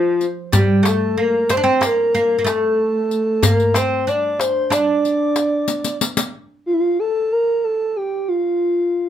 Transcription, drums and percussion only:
0.21 riq soft
0.53 riq medium
0.53 darbuka dum medium
0.70 darbuka ka soft
0.85 riq soft
0.85 darbuka tek medium
1.18 darbuka ka soft
1.49 riq soft
1.49 darbuka tek medium
1.82 riq soft
1.82 darbuka tek medium
2.15 riq soft
2.47 riq soft
2.47 darbuka tek medium
3.11 riq soft
3.43 riq medium
3.43 darbuka dum medium
3.60 riq soft
3.74 riq soft
3.74 darbuka tek medium
4.08 riq soft
4.08 darbuka ka soft
4.40 riq soft
4.40 darbuka tek medium
4.72 riq soft
4.72 darbuka tek medium
5.05 riq soft
5.36 riq soft
5.36 darbuka tek medium
5.68 riq medium
5.84 riq medium
6.01 riq medium
6.01 darbuka ka soft
6.17 riq medium

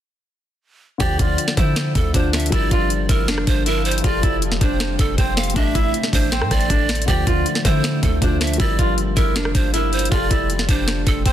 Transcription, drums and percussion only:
1.00 kick loud
1.00 closed hi-hat medium
1.19 kick loud
1.19 closed hi-hat medium
1.38 closed hi-hat medium
1.48 snare medium
1.57 kick loud
1.57 closed hi-hat medium
1.76 finger snap medium
1.76 snare loud
1.76 closed hi-hat medium
1.95 kick medium
1.95 closed hi-hat medium
2.14 kick loud
2.14 closed hi-hat medium
2.33 finger snap medium
2.33 snare loud
2.33 closed hi-hat medium
2.40 closed hi-hat medium
2.46 closed hi-hat medium
2.52 kick loud
2.52 closed hi-hat medium
2.71 kick loud
2.71 closed hi-hat medium
2.90 closed hi-hat medium
3.09 kick loud
3.09 closed hi-hat medium
3.28 finger snap medium
3.28 snare loud
3.28 closed hi-hat medium
3.38 cross-stick loud
3.47 kick medium
3.47 closed hi-hat medium
3.66 closed hi-hat medium
3.85 closed hi-hat medium
3.91 closed hi-hat medium
3.98 closed hi-hat medium
4.04 kick loud
4.04 closed hi-hat medium
4.23 kick loud
4.23 closed hi-hat medium
4.42 closed hi-hat medium
4.52 snare medium
4.61 kick loud
4.61 closed hi-hat medium
4.80 finger snap medium
4.80 snare loud
4.80 closed hi-hat medium
4.99 kick medium
4.99 closed hi-hat medium
5.18 kick loud
5.18 closed hi-hat medium
5.37 finger snap medium
5.37 snare medium
5.37 closed hi-hat medium
5.43 closed hi-hat medium
5.50 closed hi-hat medium
5.56 kick loud
5.56 closed hi-hat medium
5.75 kick loud
5.75 closed hi-hat medium
5.94 closed hi-hat medium
6.03 snare medium
6.13 kick loud
6.13 open hi-hat medium
6.32 finger snap medium
6.32 snare loud
6.32 closed hi-hat medium
6.42 cross-stick loud
6.51 kick medium
6.51 cross-stick medium
6.51 closed hi-hat medium
6.61 closed hi-hat soft
6.70 kick loud
6.70 closed hi-hat medium
6.89 finger snap medium
6.89 snare loud
6.89 closed hi-hat medium
6.95 closed hi-hat medium
7.02 closed hi-hat medium
7.08 kick loud
7.08 closed hi-hat medium
7.27 kick loud
7.27 closed hi-hat medium
7.46 closed hi-hat medium
7.55 snare medium
7.65 kick medium
7.65 closed hi-hat medium
7.84 finger snap medium
7.84 snare loud
7.84 closed hi-hat medium
8.03 kick medium
8.03 closed hi-hat medium
8.22 kick loud
8.22 closed hi-hat medium
8.41 finger snap medium
8.41 snare loud
8.41 closed hi-hat medium
8.47 closed hi-hat medium
8.53 closed hi-hat medium
8.60 kick loud
8.60 closed hi-hat medium
8.79 kick loud
8.79 closed hi-hat medium
8.98 closed hi-hat medium
9.17 kick medium
9.17 closed hi-hat medium
9.36 finger snap medium
9.36 snare loud
9.36 closed hi-hat medium
9.45 cross-stick loud
9.55 kick medium
9.55 closed hi-hat medium
9.74 closed hi-hat medium
9.93 closed hi-hat medium
9.99 closed hi-hat medium
10.05 closed hi-hat medium
10.12 kick loud
10.12 closed hi-hat medium
10.31 kick loud
10.31 closed hi-hat medium
10.50 closed hi-hat medium
10.59 snare medium
10.69 kick medium
10.69 closed hi-hat medium
10.88 finger snap medium
10.88 snare loud
10.88 closed hi-hat medium
11.07 kick medium
11.07 closed hi-hat medium
11.26 kick loud
11.26 closed hi-hat medium

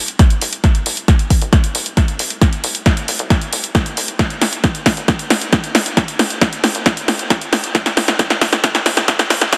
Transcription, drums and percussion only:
0.08 closed hi-hat medium
0.19 kick loud
0.19 snare medium
0.19 closed hi-hat medium
0.30 closed hi-hat soft
0.41 open hi-hat loud
0.53 closed hi-hat medium
0.64 kick loud
0.64 snare medium
0.64 closed hi-hat medium
0.75 closed hi-hat soft
0.86 open hi-hat loud
0.97 closed hi-hat soft
1.08 kick loud
1.08 snare medium
1.08 closed hi-hat medium
1.19 closed hi-hat soft
1.30 kick medium
1.30 open hi-hat loud
1.42 closed hi-hat soft
1.53 kick loud
1.53 snare medium
1.53 closed hi-hat medium
1.64 closed hi-hat soft
1.75 open hi-hat loud
1.86 closed hi-hat soft
1.97 kick loud
1.97 snare medium
1.97 closed hi-hat medium
2.08 closed hi-hat soft
2.19 open hi-hat loud
2.30 closed hi-hat soft
2.42 kick loud
2.42 snare medium
2.42 closed hi-hat medium
2.53 closed hi-hat soft
2.64 open hi-hat loud
2.75 closed hi-hat soft
2.86 kick loud
2.86 snare medium
2.86 closed hi-hat medium
2.97 closed hi-hat soft
3.08 open hi-hat loud
3.19 closed hi-hat soft
3.30 kick loud
3.30 snare medium
3.30 closed hi-hat medium
3.42 closed hi-hat soft
3.53 open hi-hat loud
3.64 closed hi-hat soft
3.75 kick loud
3.75 snare medium
3.75 closed hi-hat medium
3.86 closed hi-hat soft
3.97 open hi-hat loud
4.08 closed hi-hat soft
4.19 kick loud
4.19 snare medium
4.19 closed hi-hat medium
4.30 closed hi-hat soft
4.41 snare medium
4.41 open hi-hat loud
4.53 closed hi-hat soft
4.64 kick loud
4.64 snare medium
4.64 closed hi-hat medium
4.75 closed hi-hat soft
4.86 kick medium
4.86 snare medium
4.86 open hi-hat loud
4.97 closed hi-hat soft
5.08 kick loud
5.08 snare medium
5.08 closed hi-hat medium
5.19 closed hi-hat soft
5.30 snare medium
5.30 open hi-hat loud
5.42 closed hi-hat soft
5.53 kick loud
5.53 snare medium
5.53 closed hi-hat medium
5.64 closed hi-hat soft
5.75 snare medium
5.75 open hi-hat loud
5.86 closed hi-hat soft
5.97 kick loud
5.97 snare medium
5.97 closed hi-hat medium
6.08 closed hi-hat medium
6.19 snare medium
6.19 open hi-hat loud
6.30 closed hi-hat medium
6.41 kick loud
6.41 snare medium
6.41 closed hi-hat medium
6.53 closed hi-hat soft
6.64 snare medium
6.64 open hi-hat loud
6.75 closed hi-hat medium
6.86 kick loud
6.86 snare medium
6.86 closed hi-hat medium
6.97 closed hi-hat medium
7.08 snare medium
7.08 open hi-hat loud
7.19 closed hi-hat medium
7.30 kick loud
7.30 snare medium
7.30 closed hi-hat medium
7.42 closed hi-hat medium
7.53 snare medium
7.53 open hi-hat loud
7.64 closed hi-hat medium
7.75 kick loud
7.75 snare medium
7.75 closed hi-hat medium
7.86 snare medium
7.86 closed hi-hat medium
7.97 snare medium
7.97 open hi-hat loud
8.08 snare medium
8.08 closed hi-hat medium
8.19 kick loud
8.19 snare medium
8.19 closed hi-hat medium
8.30 snare medium
8.30 closed hi-hat medium
8.41 kick medium
8.41 snare loud
8.41 open hi-hat loud
8.53 snare medium
8.53 closed hi-hat medium
8.64 kick loud
8.64 snare loud
8.64 closed hi-hat medium
8.75 snare medium
8.75 closed hi-hat medium
8.86 snare loud
8.86 open hi-hat loud
8.97 snare medium
8.97 closed hi-hat medium
9.08 kick loud
9.08 snare loud
9.08 closed hi-hat medium
9.19 snare medium
9.19 closed hi-hat medium
9.30 snare loud
9.30 open hi-hat loud
9.41 snare medium
9.41 closed hi-hat medium
9.53 kick loud
9.53 snare loud
9.53 closed hi-hat medium

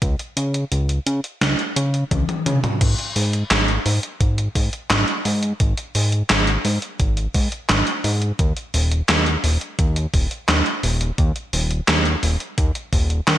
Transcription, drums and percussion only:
0.02 kick loud
0.02 closed hi-hat medium
0.19 closed hi-hat soft
0.37 closed hi-hat medium
0.54 closed hi-hat soft
0.72 closed hi-hat medium
0.89 closed hi-hat soft
1.07 closed hi-hat medium
1.24 closed hi-hat soft
1.41 snare loud
1.41 closed hi-hat medium
1.59 closed hi-hat soft
1.76 closed hi-hat medium
1.94 closed hi-hat soft
2.11 kick loud
2.11 closed hi-hat medium
2.11 high tom medium
2.29 closed hi-hat soft
2.29 high tom medium
2.46 closed hi-hat medium
2.46 mid tom medium
2.64 closed hi-hat soft
2.64 mid tom medium
2.81 kick loud
2.81 closed hi-hat medium
2.81 crash loud
2.99 closed hi-hat soft
3.16 open hi-hat medium
3.33 closed hi-hat soft
3.51 snare loud
3.51 clap loud
3.51 closed hi-hat medium
3.68 closed hi-hat soft
3.86 open hi-hat medium
4.03 closed hi-hat soft
4.21 kick loud
4.21 closed hi-hat medium
4.38 closed hi-hat soft
4.55 kick loud
4.55 open hi-hat medium
4.73 closed hi-hat soft
4.90 snare loud
4.90 clap loud
4.90 closed hi-hat medium
5.08 closed hi-hat soft
5.25 open hi-hat medium
5.43 closed hi-hat soft
5.60 kick loud
5.60 closed hi-hat medium
5.77 closed hi-hat soft
5.95 open hi-hat medium
6.12 closed hi-hat soft
6.30 snare loud
6.30 clap loud
6.30 closed hi-hat medium
6.47 closed hi-hat soft
6.65 open hi-hat medium
6.82 closed hi-hat soft
7.00 kick loud
7.00 closed hi-hat medium
7.17 closed hi-hat soft
7.34 kick loud
7.34 open hi-hat medium
7.52 closed hi-hat soft
7.69 snare loud
7.69 clap medium
7.69 closed hi-hat medium
7.87 closed hi-hat soft
8.04 open hi-hat medium
8.22 closed hi-hat soft
8.39 kick loud
8.39 closed hi-hat medium
8.57 closed hi-hat soft
8.74 open hi-hat medium
8.91 closed hi-hat soft
9.09 snare loud
9.09 clap medium
9.09 closed hi-hat medium
9.26 closed hi-hat soft
9.44 open hi-hat medium
9.61 closed hi-hat soft
9.79 kick loud
9.79 closed hi-hat medium
9.96 closed hi-hat soft
10.14 kick loud
10.14 open hi-hat medium
10.31 closed hi-hat soft
10.48 snare loud
10.48 clap medium
10.48 closed hi-hat medium
10.66 closed hi-hat soft
10.83 open hi-hat medium
11.01 closed hi-hat soft
11.18 kick loud
11.18 closed hi-hat medium
11.36 closed hi-hat soft
11.53 open hi-hat medium
11.71 closed hi-hat soft
11.88 snare loud
11.88 clap medium
11.88 closed hi-hat medium
12.05 closed hi-hat soft
12.23 open hi-hat medium
12.40 closed hi-hat soft
12.58 kick loud
12.58 closed hi-hat medium
12.75 closed hi-hat soft
12.93 kick loud
12.93 open hi-hat medium
13.10 closed hi-hat soft
13.28 snare loud
13.28 clap medium
13.28 closed hi-hat medium

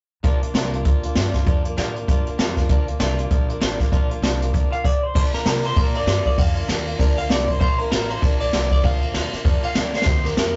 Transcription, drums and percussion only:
0.24 kick loud
0.24 closed hi-hat medium
0.43 closed hi-hat medium
0.55 snare loud
0.55 closed hi-hat medium
0.73 closed hi-hat medium
0.85 kick loud
0.85 closed hi-hat medium
1.03 closed hi-hat medium
1.15 snare loud
1.15 closed hi-hat medium
1.34 kick medium
1.34 snare soft
1.34 closed hi-hat medium
1.46 kick loud
1.46 closed hi-hat medium
1.65 closed hi-hat medium
1.78 snare loud
1.78 closed hi-hat medium
1.96 closed hi-hat medium
2.08 kick loud
2.08 closed hi-hat medium
2.27 closed hi-hat medium
2.39 snare loud
2.39 closed hi-hat medium
2.57 kick medium
2.57 snare soft
2.57 closed hi-hat medium
2.69 kick loud
2.69 closed hi-hat medium
2.88 closed hi-hat medium
3.00 snare loud
3.00 closed hi-hat medium
3.18 closed hi-hat medium
3.31 kick loud
3.31 closed hi-hat medium
3.50 closed hi-hat medium
3.61 snare loud
3.61 closed hi-hat medium
3.80 kick medium
3.80 snare soft
3.80 closed hi-hat medium
3.92 kick loud
3.92 closed hi-hat medium
4.11 closed hi-hat medium
4.23 snare loud
4.23 closed hi-hat medium
4.42 closed hi-hat medium
4.54 kick loud
4.54 closed hi-hat medium
4.72 closed hi-hat medium
4.85 kick loud
4.85 crash medium
5.15 kick loud
5.15 crash loud
5.33 snare soft
5.33 ride medium
5.46 snare loud
5.46 ride medium
5.64 ride medium
5.76 kick loud
5.76 ride medium
5.95 ride medium
6.07 snare loud
6.07 ride medium
6.26 kick medium
6.26 ride medium
6.38 kick loud
6.38 ride loud
6.56 ride medium
6.69 snare loud
6.69 ride medium
6.87 ride medium
6.99 kick loud
6.99 snare soft
6.99 ride medium
7.17 ride medium
7.30 snare loud
7.30 ride medium
7.48 kick medium
7.48 ride medium
7.61 kick loud
7.61 ride medium
7.79 ride medium
7.92 snare loud
7.92 ride medium
8.10 ride medium
8.22 kick loud
8.22 snare soft
8.22 ride medium
8.40 ride medium
8.53 snare loud
8.53 ride medium
8.71 kick medium
8.71 ride medium
8.84 kick loud
8.84 ride loud
9.02 ride medium
9.14 snare loud
9.14 ride medium
9.33 snare soft
9.33 ride medium
9.45 kick loud
9.45 snare soft
9.45 ride medium
9.63 ride medium
9.75 snare loud
9.75 ride medium
9.94 snare medium
10.02 snare medium
10.06 kick loud
10.06 ride medium
10.25 snare soft
10.25 ride medium
10.37 snare loud
10.37 ride medium

